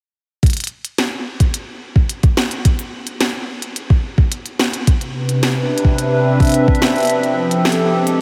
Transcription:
0.43 kick medium
0.43 closed hi-hat soft
0.46 closed hi-hat soft
0.50 closed hi-hat soft
0.53 closed hi-hat soft
0.57 closed hi-hat soft
0.60 closed hi-hat medium
0.64 closed hi-hat medium
0.67 closed hi-hat medium
0.85 closed hi-hat medium
0.98 snare loud
0.98 closed hi-hat medium
1.40 kick medium
1.40 closed hi-hat medium
1.54 closed hi-hat medium
1.96 kick medium
2.09 closed hi-hat medium
2.23 kick loud
2.23 closed hi-hat soft
2.37 snare loud
2.51 closed hi-hat medium
2.65 kick medium
2.65 closed hi-hat medium
2.79 closed hi-hat soft
3.07 closed hi-hat soft
3.21 snare loud
3.21 closed hi-hat medium
3.62 closed hi-hat medium
3.76 closed hi-hat medium
3.90 kick medium
4.18 kick medium
4.32 closed hi-hat medium
4.46 closed hi-hat soft
4.59 snare loud
4.74 closed hi-hat medium
4.87 7.10 C3 medium
4.87 kick medium
4.87 closed hi-hat medium
5.01 closed hi-hat soft
5.12 7.43 B4 medium
5.21 7.43 D4 medium
5.28 8.21 C4 medium
5.28 closed hi-hat medium
5.43 snare loud
5.43 closed hi-hat medium
5.78 closed hi-hat medium
5.85 7.93 E5 medium
5.85 kick medium
5.98 closed hi-hat medium
6.40 kick medium
6.40 closed hi-hat soft
6.42 closed hi-hat soft
6.45 closed hi-hat soft
6.47 closed hi-hat soft
6.49 closed hi-hat soft
6.52 closed hi-hat soft
6.54 closed hi-hat medium
6.68 kick loud
6.75 closed hi-hat soft
6.82 snare loud
6.96 closed hi-hat soft
6.98 closed hi-hat soft
7.00 closed hi-hat soft
7.03 closed hi-hat soft
7.05 closed hi-hat soft
7.07 closed hi-hat soft
7.10 7.93 F3 medium
7.10 closed hi-hat medium
7.23 closed hi-hat soft
7.47 8.21 G4 medium
7.47 7.93 A4 medium
7.47 closed hi-hat soft
7.65 snare loud
7.72 closed hi-hat medium
7.93 8.21 G#3 medium
8.07 closed hi-hat medium

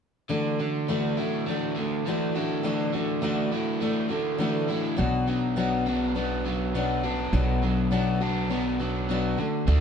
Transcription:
0.29 0.59 D3 medium
0.29 0.59 E3 medium
0.29 0.59 A3 medium
0.29 0.59 D4 medium
0.29 0.58 F#4 medium
0.59 1.75 D3 medium
0.59 0.88 A3 soft
0.59 0.89 D4 soft
0.59 0.88 F#4 soft
0.88 1.17 D3 medium
0.88 1.18 E3 medium
0.88 1.18 A3 medium
0.88 1.18 D4 medium
0.88 1.17 F#4 medium
1.17 1.48 D4 soft
1.17 2.35 E4 medium
1.17 1.47 F#4 medium
1.21 1.47 A3 soft
1.48 1.76 E3 medium
1.48 1.77 A3 medium
1.48 1.77 D4 medium
1.48 1.77 F#4 medium
1.76 2.64 D3 medium
1.76 2.07 A3 soft
1.76 2.07 D4 soft
1.76 2.06 F#4 soft
2.07 2.35 D3 medium
2.07 2.36 E3 medium
2.07 2.36 A3 medium
2.07 2.35 D4 medium
2.07 2.34 F#4 medium
2.35 2.63 A3 soft
2.35 2.63 D4 soft
2.35 3.51 E4 medium
2.35 2.64 F#4 soft
2.63 2.93 D3 medium
2.63 2.93 E3 medium
2.63 2.93 A3 medium
2.63 2.93 D4 medium
2.63 2.93 F#4 medium
2.94 4.09 D3 medium
2.94 3.22 A3 soft
2.94 3.23 D4 soft
2.94 3.23 F#4 soft
3.22 3.51 D3 medium
3.22 3.52 E3 medium
3.22 3.52 A3 medium
3.22 3.52 D4 medium
3.22 3.51 F#4 medium
3.52 3.81 A3 soft
3.52 3.82 D4 soft
3.52 4.67 E4 medium
3.52 3.81 F#4 soft
3.81 4.10 E3 medium
3.81 4.11 A3 medium
3.81 4.09 D4 medium
3.81 4.08 F#4 medium
4.09 4.98 D3 medium
4.09 4.39 A3 soft
4.09 4.39 D4 soft
4.09 4.39 F#4 medium
4.38 4.68 D3 medium
4.38 4.69 E3 medium
4.38 4.69 A3 medium
4.38 4.69 D4 medium
4.38 4.67 F#4 medium
4.68 4.97 A3 soft
4.68 4.97 D4 soft
4.68 4.98 E4 medium
4.68 4.97 F#4 soft
4.96 7.29 B1 medium
4.96 5.27 B2 medium
4.96 5.27 F#3 medium
4.96 5.27 B3 medium
4.96 5.27 D4 medium
4.96 5.26 F#4 medium
5.27 6.45 F#3 medium
5.27 5.56 B3 soft
5.27 5.56 D4 soft
5.27 5.56 F#4 medium
5.56 5.86 B2 medium
5.56 5.86 F#3 medium
5.56 5.86 B3 medium
5.56 5.86 D4 medium
5.56 5.85 F#4 medium
5.86 6.14 B3 soft
5.86 6.15 D4 soft
5.86 6.15 F#4 soft
6.15 6.44 F#3 medium
6.15 6.45 B3 medium
6.15 6.45 D4 medium
6.15 6.43 F#4 medium
6.44 7.62 F#3 medium
6.44 6.74 B3 soft
6.44 6.75 D4 soft
6.44 6.74 F#4 soft
6.75 7.04 B2 medium
6.75 7.04 F#3 medium
6.75 7.04 B3 medium
6.75 7.04 D4 medium
6.75 7.02 F#4 medium
7.04 7.33 B3 soft
7.04 7.33 D4 soft
7.04 7.33 F#4 medium
7.33 9.34 B1 medium
7.33 7.62 B2 medium
7.33 7.62 F#3 medium
7.33 7.63 B3 medium
7.33 7.63 D4 medium
7.33 7.62 F#4 medium
7.63 8.79 F#3 medium
7.63 7.91 B3 soft
7.63 7.91 D4 soft
7.63 7.92 F#4 soft
7.91 8.20 B2 medium
7.91 8.21 F#3 medium
7.91 8.21 B3 medium
7.91 8.21 D4 medium
7.91 8.19 F#4 medium
8.20 8.49 B3 soft
8.20 8.50 D4 soft
8.20 8.50 F#4 medium
8.49 8.79 F#3 medium
8.49 8.79 B3 medium
8.49 8.80 D4 medium
8.49 8.78 F#4 medium
8.80 9.38 F#3 medium
8.80 9.09 B3 soft
8.80 9.10 D4 soft
8.80 9.09 F#4 soft
9.09 9.38 B2 medium
9.09 9.39 F#3 medium
9.09 9.39 B3 medium
9.09 9.38 D4 medium
9.09 9.36 F#4 medium
9.37 9.66 D3 medium
9.37 9.67 A3 soft
9.37 9.68 D4 soft
9.37 9.67 F#4 medium
9.67 9.80 D2 medium
9.67 9.80 D3 medium
9.67 9.80 E3 medium
9.67 9.80 A3 medium
9.67 9.80 D4 medium
9.67 9.80 F#4 medium

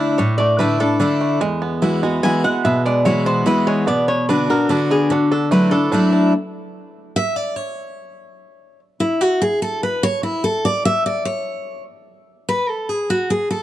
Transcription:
0.00 0.16 D3 medium
0.00 0.17 A3 loud
0.00 0.17 D4 medium
0.00 0.17 E4 loud
0.00 0.14 E5 medium
0.18 0.97 A2 medium
0.18 0.59 D4 medium
0.18 0.37 C#5 medium
0.38 0.97 A3 medium
0.38 0.58 D5 medium
0.59 0.79 D3 medium
0.59 0.79 A3 medium
0.59 0.79 D4 medium
0.59 0.80 D4 medium
0.59 0.79 E4 medium
0.59 0.79 B4 medium
0.80 0.99 D4 medium
0.80 1.00 D4 soft
0.80 0.99 E4 medium
0.80 1.37 A4 medium
1.00 1.39 D3 medium
1.00 1.39 A3 medium
1.00 1.41 D4 medium
1.00 1.40 D4 loud
1.00 1.40 E4 loud
1.21 1.40 A3 medium
1.41 2.19 E2 medium
1.41 1.99 G#3 medium
1.62 2.64 B3 medium
1.82 2.02 E3 medium
1.82 2.02 G#3 medium
1.82 2.02 B3 medium
1.82 2.22 E4 medium
1.82 2.02 F#4 medium
2.03 2.43 G#3 medium
2.03 2.23 B3 medium
2.03 2.22 F#4 medium
2.23 2.43 E3 medium
2.23 2.43 G#3 medium
2.23 2.44 B3 loud
2.23 2.81 E4 medium
2.23 2.43 F#4 loud
2.23 2.43 G#5 medium
2.44 2.84 G#3 medium
2.44 2.64 F#4 medium
2.44 2.64 F#5 loud
2.65 3.43 B2 medium
2.65 3.22 B3 medium
2.65 2.85 E5 medium
2.86 3.43 G#3 medium
2.86 3.05 D5 medium
3.05 3.44 E3 medium
3.05 3.45 G#3 medium
3.05 3.45 B3 medium
3.05 3.45 E4 medium
3.05 3.45 F#4 medium
3.05 3.25 C#5 medium
3.26 3.83 B3 medium
3.26 3.46 C5 loud
3.46 3.85 E3 loud
3.46 3.85 G#3 medium
3.46 3.86 B3 medium
3.46 3.87 E4 medium
3.46 3.86 F#4 loud
3.46 3.67 B4 medium
3.67 3.87 G#3 medium
3.67 3.87 C#5 medium
3.87 4.66 B2 medium
3.87 4.07 B3 medium
3.87 4.08 D5 medium
4.08 4.49 B3 medium
4.08 4.28 C#5 medium
4.29 4.48 D3 medium
4.29 4.49 B3 medium
4.29 4.70 D4 medium
4.29 4.49 D4 medium
4.29 4.48 F#4 medium
4.29 4.49 B4 medium
4.50 4.89 B3 medium
4.50 4.69 D4 soft
4.50 4.69 F#4 medium
4.50 4.70 A#4 medium
4.69 5.08 D3 loud
4.69 5.09 B3 medium
4.69 5.11 D4 medium
4.69 5.09 D4 medium
4.69 5.09 F#4 medium
4.69 4.90 A4 medium
4.91 5.11 B3 medium
4.91 5.10 G#4 medium
5.10 5.88 D3 medium
5.10 5.30 D4 medium
5.10 5.31 F#4 medium
5.31 5.71 D4 medium
5.31 5.51 A4 medium
5.51 5.71 F#3 medium
5.51 6.09 A3 medium
5.51 5.72 A3 medium
5.51 5.72 D4 medium
5.51 5.71 E4 medium
5.51 5.72 B4 medium
5.71 5.91 D4 medium
5.71 5.93 D4 soft
5.71 5.92 E4 medium
5.71 6.19 A4 loud
5.92 6.31 F#3 medium
5.92 6.32 A3 loud
5.92 6.11 D4 medium
5.92 6.32 D4 medium
5.92 6.32 E4 medium
6.13 6.33 D4 medium
7.16 7.36 E5 loud
7.36 7.56 D5 medium
7.56 8.79 C#5 medium
9.00 9.21 E4 medium
9.21 9.41 F#4 medium
9.42 9.61 G#4 loud
9.62 9.82 A4 medium
9.83 10.02 B4 medium
10.03 10.23 C#5 loud
10.23 10.43 E4 medium
10.44 10.64 A4 medium
10.65 10.84 D5 loud
10.85 11.05 E5 loud
11.06 11.25 D5 medium
11.25 11.83 C#5 medium
12.49 12.69 B4 medium
12.69 12.89 A4 medium
12.89 13.09 G#4 medium
13.10 13.30 F#4 medium
13.30 13.50 G#4 medium
13.51 13.63 A4 medium

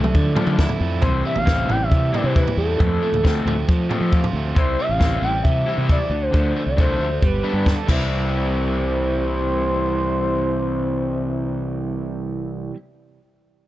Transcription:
0.00 0.11 C2 medium
0.00 0.36 D3 medium
0.00 0.81 A3 medium
0.00 0.36 D4 medium
0.00 0.13 E5 medium
0.00 mid tom medium
0.14 0.33 D3 medium
0.14 1.03 F3 medium
0.14 kick loud
0.36 0.66 D3 medium
0.36 0.65 A3 medium
0.36 0.65 D4 medium
0.36 1.03 D4 medium
0.36 0.65 F4 medium
0.36 floor tom medium
0.36 mid tom medium
0.47 0.66 D3 medium
0.47 mid tom medium
0.59 1.03 E4 medium
0.59 kick loud
0.59 snare medium
0.69 floor tom medium
0.80 0.99 F2 medium
0.80 1.03 A3 medium
1.01 1.21 C2 medium
1.01 2.14 C3 medium
1.01 1.31 E3 medium
1.01 1.31 G3 medium
1.01 1.31 C4 medium
1.01 1.31 E4 medium
1.01 1.22 C5 medium
1.01 kick loud
1.01 floor tom medium
1.25 1.68 G3 medium
1.25 1.39 E5 loud
1.36 1.64 A1 medium
1.36 1.73 F5 loud
1.36 floor tom medium
1.45 1.75 E3 medium
1.45 1.75 G3 medium
1.45 1.75 C4 medium
1.45 2.13 C4 medium
1.45 1.75 E4 medium
1.45 kick loud
1.45 snare medium
1.69 1.88 A1 medium
1.69 2.57 G3 medium
1.69 1.84 G5 loud
1.69 floor tom medium
1.83 2.16 E5 loud
1.91 2.10 C3 medium
1.91 2.80 E3 medium
1.91 kick loud
2.13 2.42 E3 medium
2.13 2.42 G3 medium
2.13 3.24 C4 medium
2.13 2.42 C4 medium
2.13 2.42 E4 medium
2.13 2.26 D5 medium
2.13 floor tom medium
2.24 2.43 C3 medium
2.24 2.37 C5 medium
2.36 2.80 E4 medium
2.36 2.57 B4 medium
2.36 kick loud
2.48 floor tom medium
2.57 2.76 E2 medium
2.57 2.80 G3 medium
2.57 3.86 A4 medium
2.79 2.98 F2 loud
2.79 3.90 F2 medium
2.79 3.08 F3 medium
2.79 3.08 A3 medium
2.79 3.08 C4 medium
2.79 3.08 F4 medium
2.79 kick loud
2.79 floor tom medium
3.02 3.45 A3 medium
3.12 3.41 D2 medium
3.12 floor tom medium
3.23 3.52 F3 medium
3.23 3.52 A3 medium
3.23 3.52 C4 medium
3.23 3.89 C4 medium
3.23 3.53 F4 medium
3.23 kick loud
3.23 snare medium
3.45 3.64 D2 medium
3.45 4.34 A3 medium
3.45 floor tom medium
3.68 3.87 F3 medium
3.68 4.57 F3 medium
3.68 kick loud
3.90 4.19 F3 medium
3.90 4.19 A3 medium
3.90 4.56 C4 medium
3.90 4.19 C4 medium
3.90 4.18 F4 medium
3.90 floor tom medium
4.01 4.19 F3 medium
4.13 4.56 F4 medium
4.13 kick loud
4.24 floor tom medium
4.33 4.52 D2 medium
4.33 4.57 A3 medium
4.55 4.75 C2 loud
4.55 4.84 C3 medium
4.55 5.67 C3 medium
4.55 4.84 G3 medium
4.55 4.85 C4 medium
4.55 4.85 E4 medium
4.55 4.82 C5 medium
4.55 kick loud
4.79 5.22 G3 medium
4.79 4.92 E5 loud
4.89 5.17 A1 medium
4.89 5.25 F5 loud
5.00 5.29 C3 medium
5.00 5.29 G3 medium
5.00 5.29 C4 medium
5.00 5.67 C4 medium
5.00 5.29 E4 medium
5.00 kick loud
5.00 snare medium
5.22 5.41 A1 medium
5.22 6.11 G3 medium
5.22 5.43 G5 loud
5.44 5.63 C3 medium
5.44 6.12 E3 medium
5.44 5.85 E5 loud
5.44 kick medium
5.66 5.96 C3 medium
5.66 5.96 G3 medium
5.66 5.96 C4 medium
5.66 6.11 C4 medium
5.66 5.95 E4 medium
5.78 5.96 C3 medium
5.89 6.11 E4 medium
5.89 6.24 D5 medium
5.89 kick loud
6.10 6.29 D2 medium
6.10 6.32 D3 medium
6.22 6.71 C5 medium
6.32 6.52 D2 medium
6.32 6.61 D3 medium
6.32 7.21 D3 medium
6.32 6.62 F3 medium
6.32 6.62 A3 medium
6.32 6.62 D4 medium
6.32 kick loud
6.56 7.00 A3 medium
6.66 6.94 C2 medium
6.66 6.79 D5 medium
6.77 7.06 D3 medium
6.77 7.06 F3 medium
6.77 7.06 A3 medium
6.77 7.06 D4 medium
6.77 7.22 D4 medium
6.77 7.27 C5 medium
6.77 kick loud
6.99 7.18 D2 medium
6.99 7.22 A3 medium
7.22 7.40 G1 medium
7.22 7.88 G3 medium
7.22 7.68 B4 medium
7.22 kick loud
7.44 7.73 D3 medium
7.44 7.72 G3 medium
7.44 7.72 B3 medium
7.44 7.72 D4 medium
7.44 7.88 D4 medium
7.53 7.72 G2 medium
7.66 7.88 A4 medium
7.66 kick loud
7.66 snare medium
7.86 12.70 C2 medium
7.86 12.72 C3 medium
7.86 12.73 C3 medium
7.86 12.75 E3 medium
7.86 12.74 G3 medium
7.86 12.76 G3 medium
7.86 12.74 C4 medium
7.86 12.75 E4 medium
7.86 12.41 C5 medium
7.86 kick medium
7.86 crash medium
7.90 12.77 C4 medium
7.90 12.77 E4 medium
7.90 12.76 G4 medium

